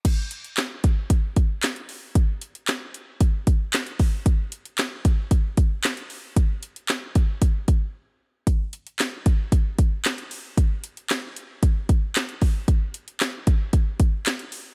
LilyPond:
\new DrumStaff \with { instrumentName = "Drums" } \drummode { \time 4/4 \tempo 4 = 114 <cymc hh bd>8 hh16 hh16 <hc hh sn>8 <hh bd>8 <hh bd>8 <hh bd>8 <hc hh sn>16 hh16 hho8 | <hh bd>8 hh16 hh16 <hc hh sn>8 hh8 <hh bd>8 <hh bd>8 <hc hh sn>16 hh16 <hho bd>8 | <hh bd>8 hh16 hh16 <hc hh sn>8 <hh bd>8 <hh bd>8 <hh bd>8 <hc hh sn>16 hh16 hho8 | <hh bd>8 hh16 hh16 <hc hh sn>8 <hh bd>8 <hh bd>8 <hh bd>8 r4 |
<hh bd>8 hh16 hh16 <hc hh sn>8 <hh bd>8 <hh bd>8 <hh bd>8 <hc hh sn>16 hh16 hho8 | <hh bd>8 hh16 hh16 <hc hh sn>8 hh8 <hh bd>8 <hh bd>8 <hc hh sn>16 hh16 <hho bd>8 | <hh bd>8 hh16 hh16 <hc hh sn>8 <hh bd>8 <hh bd>8 <hh bd>8 <hc hh sn>16 hh16 hho8 | }